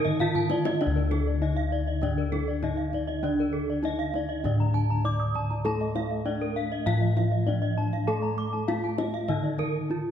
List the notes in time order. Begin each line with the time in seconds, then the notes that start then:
Already playing: D3 D#3 D#4
0.05 D#5, kendang low
0.20 D#4 F4 F5, kendang low
0.35 A5, kendang low
0.50 D5, kendang high
0.65 D#5, kendang high
0.81 D3 D4 D5, kendang high
0.87 D2
0.96 A#4, kendang slap
1.11 A4, kendang high
1.27 D5
1.42 D#4 D#5
1.56 F5
1.72 D5
1.87 D#5
2.01 D3 D4 D5, kendang low
2.18 A#4
2.32 A4, kendang slap, kendang high
2.48 D5
2.62 D#4 D#5, kendang slap, kendang low
2.77 F5
2.93 D5, kendang slap, kendang low
3.07 D#5, kendang slap
3.23 D3 D4 D5
3.39 A#4, kendang slap
3.53 A4
3.70 D5
3.83 D#4 D#5, kendang high
3.99 F5
4.14 D5, kendang high
4.29 D#5
4.44 A2 D3 D4 D5, kendang low
4.60 A#5
4.74 A5, kendang slap, kendang low
4.90 A#5
5.05 D#4 D5 D6, kendang slap
5.20 D#6
5.35 A5, kendang slap, kendang low
5.50 A#5, kendang slap
5.65 A3 A4 A5, kendang high
5.81 D#5, kendang slap
5.95 F5, kendang high
6.11 D#5
6.26 D4 D#4 D5
6.41 A#4
6.56 F5
6.72 D#5
6.86 A2 F3 F4 F5, kendang low
7.01 D#5
7.17 F5, kendang slap, kendang high
7.32 D#5
7.47 D4 D#4 D5, kendang slap, kendang low
7.62 D#5
7.78 A5, kendang slap, kendang low
7.93 F5, kendang slap
8.07 A3 A4 A5
8.22 A#5, kendang slap
8.38 D6
8.53 A5, kendang slap
8.68 D#4 F4 F5, kendang slap, kendang high
8.84 A5
8.98 D#5, kendang slap, kendang high
9.14 F5, kendang slap
9.28 D3 D#3 D#4 D#5, kendang low
9.43 D5, kendang slap
9.59 A#4, kendang slap, kendang low
9.90 D#4 F4